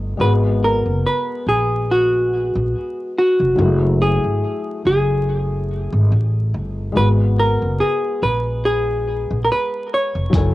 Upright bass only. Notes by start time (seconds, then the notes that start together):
Already playing: G1
0.20 G#1
0.86 F#1
1.47 A#1
2.55 A#1
3.40 F1
3.58 F#1
4.24 G#1
4.85 F#1
5.93 G#1
6.12 A1
6.54 G1
6.96 G#1
7.62 F#1
8.22 A#1
9.31 A#1
10.15 F1
10.34 F#1